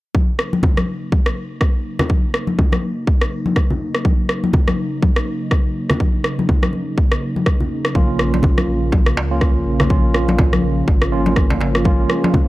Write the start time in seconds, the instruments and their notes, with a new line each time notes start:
0.14 analog synth pad C#3 F#3 A#3 D#4, kick, high conga
0.39 cross-stick
0.53 high conga
0.63 kick, low conga
0.77 cross-stick, high conga
1.12 kick, high conga
1.26 cross-stick
1.61 kick, cross-stick
1.99 cross-stick, low conga
2.09 kick, high conga
2.34 cross-stick
2.47 high conga
2.59 kick, low conga
2.72 cross-stick, high conga
3.07 kick
3.21 cross-stick
3.46 high conga
3.56 kick, cross-stick
3.70 low conga
3.95 cross-stick
4.05 kick, high conga
4.29 cross-stick
4.44 high conga
4.53 kick, low conga
4.68 cross-stick, high conga
5.03 kick, high conga
5.16 cross-stick
5.51 kick, cross-stick
5.90 cross-stick, low conga
6.00 kick, high conga
6.24 cross-stick
6.39 high conga
6.49 kick, low conga
6.63 cross-stick, high conga
6.73 high conga
6.98 kick
7.12 cross-stick
7.36 high conga
7.46 kick, cross-stick
7.60 low conga
7.85 cross-stick
7.95 sub bass A#1, analog synth pad F3 A#3 F4, tine electric piano A#3 C#4 F4, kick, high conga
8.19 cross-stick
8.34 darbuka ka, high conga
8.43 kick, low conga
8.58 cross-stick, high conga
8.68 sub bass A#1
8.92 kick, darbuka tek, high conga
9.06 cross-stick
9.17 sub bass C#2, darbuka ka, darbuka tek
9.31 tine electric piano A#3 C#4 F4
9.41 kick, cross-stick
9.65 sub bass A#1
9.80 cross-stick, low conga
9.90 tine electric piano A#3 C#4 F4, kick, high conga
10.14 cross-stick
10.28 darbuka ka, high conga
10.38 kick, darbuka tek, low conga
10.53 cross-stick, high conga
10.63 sub bass A#1
10.88 sub bass G#1, kick, darbuka tek
11.02 cross-stick
11.12 tine electric piano A#3 C#4 F4
11.26 darbuka ka, high conga
11.36 kick, cross-stick
11.50 darbuka tek, low conga
11.61 darbuka ka, darbuka tek
11.75 cross-stick
11.85 analog synth pad G#3, tine electric piano A#3 C#4 F4, kick, high conga
12.10 cross-stick
12.24 darbuka ka, high conga
12.34 kick, low conga